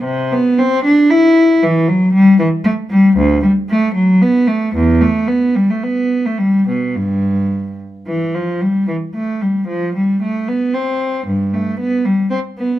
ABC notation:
X:1
M:3/4
L:1/16
Q:1/4=113
K:C
V:1 name="Cello" clef=bass
C,2 B,2 C2 D2 E4 | [K:G] E,2 F,2 G,2 E,2 A,2 G,2 | D,,2 G,2 A,2 F,2 B,2 A,2 | E,,2 A,2 B,2 G, A, B,3 A, |
G,2 B,,2 G,,6 z2 | [K:Gmix] E,2 F,2 G,2 E,2 A,2 G,2 | F,2 G,2 A,2 B,2 C4 | G,,2 A,2 B,2 G,2 C2 B,2 |]